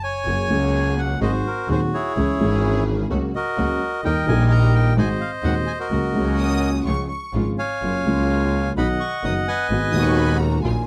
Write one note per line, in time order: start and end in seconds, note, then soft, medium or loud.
0.03 0.94 C#5 medium
0.03 1.01 G#5 loud
0.25 0.46 F#1 medium
0.25 0.46 F#2 medium
0.25 0.46 F#3 medium
0.25 0.46 A#3 soft
0.25 0.46 C#4 soft
0.25 0.46 F#4 soft
0.25 0.46 G#4 medium
0.48 1.17 C#2 loud
0.48 1.18 C#2 medium
0.48 1.17 C#3 medium
0.48 1.16 F#3 medium
0.48 1.17 A#3 medium
0.48 1.18 C#4 medium
0.48 1.17 F#4 medium
0.48 1.17 G#4 medium
0.48 1.18 G#4 medium
0.98 1.20 F#5 medium
1.20 1.41 G#1 medium
1.20 1.41 G#2 medium
1.20 1.41 F#3 medium
1.20 1.41 C4 medium
1.20 1.41 C4 soft
1.20 1.41 D#4 soft
1.20 1.41 F#4 soft
1.20 2.13 F#4 medium
1.20 1.41 G#4 medium
1.20 1.69 C5 medium
1.20 1.32 D#5 medium
1.47 1.68 A#4 medium
1.67 1.89 D#1 medium
1.67 1.88 D#2 medium
1.67 1.89 D#2 medium
1.67 1.89 F#3 soft
1.67 1.89 C4 medium
1.67 1.89 C4 soft
1.67 1.89 D#4 soft
1.67 1.89 F#4 soft
1.67 1.89 G#4 medium
1.67 1.81 C5 medium
1.94 2.84 E4 medium
1.94 2.84 G#4 medium
1.94 2.84 C#5 medium
2.16 2.36 C#2 medium
2.16 2.37 C#2 medium
2.16 2.37 C#3 medium
2.16 2.36 E3 soft
2.16 2.37 G#3 soft
2.16 2.36 C#4 medium
2.16 2.37 C#4 soft
2.16 2.36 E4 soft
2.16 2.36 G#4 medium
2.16 2.37 G#4 medium
2.38 3.06 G#1 loud
2.38 3.07 G#1 medium
2.38 3.07 G#2 medium
2.38 3.06 E3 medium
2.38 3.07 G#3 medium
2.38 3.07 C#4 medium
2.38 3.08 C#4 medium
2.38 3.07 E4 medium
2.38 3.07 G#4 loud
2.38 3.08 G#4 medium
3.10 3.30 C#2 medium
3.10 3.30 C#3 medium
3.10 3.30 F#3 soft
3.10 3.30 A#3 medium
3.10 3.30 A#3 soft
3.10 3.30 C#4 soft
3.10 3.30 F#4 medium
3.35 4.01 F#4 medium
3.35 4.01 A#4 medium
3.35 4.04 D#5 loud
3.57 3.77 C#2 medium
3.57 3.77 C#3 medium
3.57 3.77 F#3 soft
3.57 3.77 A#3 medium
3.57 3.77 A#3 soft
3.57 3.77 C#4 medium
3.57 3.77 F#4 medium
4.03 4.23 D#2 medium
4.03 4.24 D#2 medium
4.03 4.24 D#3 medium
4.03 4.24 G3 soft
4.03 4.23 A#3 medium
4.03 4.24 A#3 soft
4.03 4.24 D#4 medium
4.03 4.24 G4 medium
4.03 4.94 A#4 medium
4.03 4.94 D#5 medium
4.03 4.26 G5 loud
4.26 4.93 A#1 loud
4.26 4.94 A#1 medium
4.26 4.94 A#2 medium
4.26 4.93 D#3 medium
4.26 4.94 G3 medium
4.26 4.93 A#3 medium
4.26 4.94 A#3 medium
4.26 4.93 D#4 medium
4.26 4.94 G4 loud
4.26 4.52 G#5 loud
4.30 4.95 G4 medium
4.52 4.75 A#5 loud
4.75 4.96 G5 loud
4.96 5.16 G#1 medium
4.96 5.17 G#1 medium
4.96 5.17 G#2 medium
4.96 5.17 D#3 medium
4.96 5.16 G#3 medium
4.96 5.17 G#3 soft
4.96 5.17 C4 medium
4.96 5.17 C4 soft
4.96 5.17 F#4 medium
4.96 5.87 C5 medium
4.96 5.79 D#5 medium
4.96 5.09 G#5 loud
5.21 5.31 F5 medium
5.42 5.63 D#1 medium
5.42 5.63 D#2 medium
5.42 5.63 D#3 medium
5.42 5.63 G#3 medium
5.42 5.63 G#3 soft
5.42 5.63 C4 medium
5.42 5.64 C4 medium
5.42 5.63 F#4 medium
5.42 5.64 F#4 medium
5.42 5.55 F#5 loud
5.67 5.72 G#5 loud
5.80 6.70 F#4 medium
5.80 6.70 A#4 medium
5.80 6.70 D#5 medium
5.90 6.10 C#2 medium
5.90 6.10 C#3 medium
5.90 6.10 F#3 soft
5.90 6.10 A#3 soft
5.90 6.10 C#4 soft
5.90 6.11 F#4 medium
6.12 6.82 C#2 loud
6.12 6.82 C#2 medium
6.12 6.82 C#3 medium
6.12 6.82 F#3 medium
6.12 6.82 A#3 medium
6.12 6.82 C#4 medium
6.12 6.82 F#4 loud
6.12 6.83 F#4 medium
6.38 6.82 D#6 loud
6.85 7.05 C#2 medium
6.85 7.06 C#2 medium
6.85 7.06 C#3 medium
6.85 7.06 F3 soft
6.85 7.05 G#3 medium
6.85 7.06 G#3 soft
6.85 7.06 C#4 soft
6.85 7.06 F4 medium
6.85 7.06 F4 soft
6.85 7.08 C#6 loud
7.10 7.43 C#6 medium
7.33 7.53 G#1 medium
7.33 7.54 G#1 medium
7.33 7.54 G#2 medium
7.33 7.54 C#3 medium
7.33 7.54 F3 soft
7.33 7.54 G#3 medium
7.33 7.54 G#3 soft
7.33 7.54 C#4 soft
7.33 7.54 F4 medium
7.33 7.55 F4 medium
7.58 8.73 C#5 medium
7.58 8.73 F5 medium
7.58 8.73 G#5 medium
7.81 8.01 F#1 medium
7.81 8.02 F#2 medium
7.81 8.02 C#3 soft
7.81 8.01 F#3 soft
7.81 8.02 F#3 medium
7.81 8.01 A#3 soft
7.81 8.02 A#3 soft
7.81 8.01 F4 medium
7.81 8.02 F4 medium
8.04 8.72 C#2 loud
8.04 8.73 C#2 medium
8.04 8.73 C#3 medium
8.04 8.73 F#3 medium
8.04 8.73 A#3 medium
8.04 8.74 A#3 medium
8.04 8.73 F4 loud
8.04 8.74 F4 medium
8.76 8.96 B1 medium
8.76 8.96 B2 medium
8.76 8.96 D#3 medium
8.76 8.96 F#3 medium
8.76 8.96 F#3 soft
8.76 8.96 B3 soft
8.76 8.96 D#4 medium
8.76 8.96 F#4 medium
8.76 9.47 D#5 medium
8.76 9.67 F#5 medium
8.76 8.88 B5 loud
9.00 9.24 C#6 loud
9.23 9.43 F#1 medium
9.23 9.43 F#2 medium
9.23 9.43 D#3 medium
9.23 9.43 F#3 medium
9.23 9.43 F#3 soft
9.23 9.43 B3 medium
9.23 9.43 B3 soft
9.23 9.43 D#4 medium
9.23 9.43 F#4 medium
9.23 9.35 D#6 loud
9.48 10.37 B4 medium
9.48 10.37 D#5 medium
9.48 10.37 G#5 loud
9.69 9.89 G#1 medium
9.69 9.90 G#1 medium
9.69 9.90 G#2 medium
9.69 9.90 D#3 medium
9.69 9.90 G#3 medium
9.69 9.90 G#3 soft
9.69 9.90 B3 soft
9.69 9.90 F#4 medium
9.91 10.60 D#1 medium
9.91 10.60 D#2 loud
9.91 10.60 D#2 medium
9.91 10.59 D#3 medium
9.91 10.60 G#3 medium
9.91 10.61 B3 medium
9.91 10.61 F#4 loud
9.91 10.04 D#6 loud
9.95 10.61 F#4 medium
10.05 10.17 C#6 medium
10.18 10.41 B5 loud
10.40 10.64 A#5 loud
10.63 10.83 A#1 medium
10.63 10.83 A#2 medium
10.63 10.83 D#3 medium
10.63 10.83 F#3 soft
10.63 10.84 F#3 medium
10.63 10.84 A#3 soft
10.63 10.84 D#4 soft
10.63 10.84 F4 medium
10.63 10.86 G#5 medium